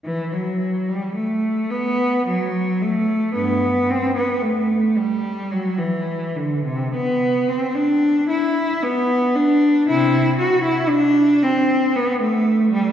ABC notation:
X:1
M:3/4
L:1/16
Q:1/4=56
K:Bphr
V:1 name="Cello"
E, F,2 G, A,2 B,2 F,2 A,2 | [G,,B,]2 C B, A,2 G,2 F, E,2 D, | C, B,2 C D2 E2 B,2 D2 | [C,E]2 F E D2 C2 B, A,2 G, |]